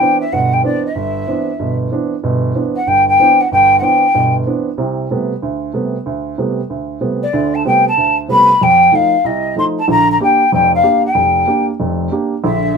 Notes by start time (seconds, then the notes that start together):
Already playing: G5
0.00 E3 B3 C4 D4
0.21 E5
0.33 G1 B2 F#5
0.53 G5
0.63 E3 B3 C4 D4 D5
0.86 E5
0.95 G1
1.27 E3 B3 C4 D4
1.59 G1 B2
1.92 E3 B3 C4 D4
2.24 G1 B2
2.54 E3 B3 C4 D4
2.76 F#5
2.87 G1 G5
3.08 G5
3.19 E3 B3 C4 D4
3.41 F#5
3.52 G1 G5
3.79 E3 B3 C4 F#5
3.83 D4 G5
4.14 G1 B2
4.47 E3 B3 C4 D4
4.78 C2 C3
5.11 C3 G3 A3 B3
5.42 D2
5.74 C3 G3 A3 B3
6.06 D2
6.38 C3 G3 A3 B3
6.70 D2
7.01 C3 G3 A3 B3
7.23 D5
7.33 D2 D3
7.55 A5
7.65 C3 G3 A3 B3 G5
7.88 A5
7.97 D2
8.28 C3 G3 A3 B3 B5
8.61 F2 G5
8.92 F3 A3 D#4 F5
9.24 C2 D#5
9.56 F3 A3 D#4 C6
9.79 A5
9.88 A#1 D3 A#5
10.11 A#5
10.20 A#3 D4 G4 G5
10.52 F1 F2 G5
10.75 F5
10.83 A#3 D4 G4
11.06 G5
11.15 F1
11.47 A#3 D4 G4
11.80 F1 F2
12.11 A#3 D4 G4
12.43 A#1 D3 E5